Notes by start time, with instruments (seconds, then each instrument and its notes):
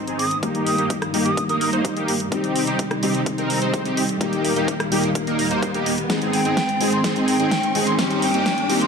Already playing: string section G#2 D#3 C4, felt piano D#3 G#3 C4 G#4, riser
0.07 supersaw synth C4 D#4 G#4, closed hi-hat
0.19 flute D#6, open hi-hat
0.31 closed hi-hat
0.42 string section G2 A#3, felt piano D#3 G3 A#3 G4, supersaw synth A#3 D#4 G4, kick, closed hi-hat
0.55 closed hi-hat
0.66 flute D#6, open hi-hat
0.78 supersaw synth A#3 D#4 G4, closed hi-hat
0.90 kick, closed hi-hat
1.02 cross-stick, closed hi-hat
1.13 felt piano D#3 G3 A#3 G4, supersaw synth A#3 D#4 G4, open hi-hat
1.25 flute D#6, closed hi-hat
1.37 kick, closed hi-hat
1.49 supersaw synth A#3 D#4 A#4, flute D#6, closed hi-hat
1.61 flute D#6, open hi-hat
1.73 supersaw synth A#3 D#4 C5, closed hi-hat
1.85 kick, closed hi-hat
1.96 supersaw synth A#3 D#4 G4, closed hi-hat
2.08 open hi-hat
2.20 closed hi-hat
2.31 string section C3 G3 D#4, felt piano D#3 G3 C4 G4, supersaw synth C4 D#4 G4, kick, closed hi-hat
2.44 closed hi-hat
2.56 open hi-hat
2.67 supersaw synth C4 D#4 G4, closed hi-hat
2.79 kick, closed hi-hat
2.91 cross-stick, closed hi-hat
3.02 felt piano D#3 G3 C4 G4, supersaw synth C4 D#4 G4, open hi-hat
3.15 closed hi-hat
3.26 kick, closed hi-hat
3.38 supersaw synth C4 D#4 A#4, closed hi-hat
3.50 open hi-hat
3.62 supersaw synth C4 D#4 C5, closed hi-hat
3.74 kick, closed hi-hat
3.85 supersaw synth C4 D#4 G4, closed hi-hat
3.97 open hi-hat
4.09 closed hi-hat
4.20 string section D#2 A#2, felt piano D#3 G3 A#3 G4, supersaw synth A#3 D#4 G4, kick, closed hi-hat
4.33 closed hi-hat
4.45 open hi-hat
4.56 supersaw synth A#3 D#4 G4, closed hi-hat
4.68 kick, closed hi-hat
4.80 cross-stick, closed hi-hat
4.90 felt piano D#3 G3 A#3 G4, supersaw synth A#3 D#4 G4, open hi-hat
5.04 closed hi-hat
5.15 kick, closed hi-hat
5.27 supersaw synth A#3 D#4 A#4, closed hi-hat
5.39 open hi-hat
5.51 supersaw synth A#3 D#4 C5, closed hi-hat
5.62 kick, closed hi-hat
5.74 supersaw synth A#3 D#4 G4, closed hi-hat
5.86 open hi-hat
5.98 closed hi-hat
6.09 string section G#2 D#3 C4, felt piano D#3 G#3 C4 G#4, supersaw synth C4 D#4 G#4, kick, snare, closed hi-hat
6.22 closed hi-hat
6.33 flute G5, open hi-hat
6.45 supersaw synth C4 D#4 G#4, closed hi-hat
6.57 kick, snare, closed hi-hat
6.69 closed hi-hat
6.79 felt piano D#3 G#3 C4 G#4, supersaw synth C4 D#4 G#4, open hi-hat
6.92 flute C6, closed hi-hat
7.03 felt piano D#3 G#3 C4 G#4, supersaw synth C4 D#4 G#4, kick, snare, closed hi-hat
7.16 closed hi-hat
7.28 flute G5, open hi-hat
7.40 supersaw synth C4 D#4 G#4, closed hi-hat
7.51 kick, snare, closed hi-hat
7.63 closed hi-hat
7.74 felt piano D#3 G#3 C4 G#4, supersaw synth C4 D#4 G#4, open hi-hat
7.87 flute C6, closed hi-hat
7.97 string section G2 A#3, felt piano D#3 G3 C4 G4, supersaw synth C4 D#4 G4, kick, snare, closed hi-hat
8.11 closed hi-hat
8.22 flute G5, open hi-hat
8.34 supersaw synth C4 D#4 G4, closed hi-hat
8.46 kick, snare, closed hi-hat
8.58 closed hi-hat
8.68 felt piano D#3 G3 C4 G4, supersaw synth C4 D#4 G4, open hi-hat
8.81 flute C6, closed hi-hat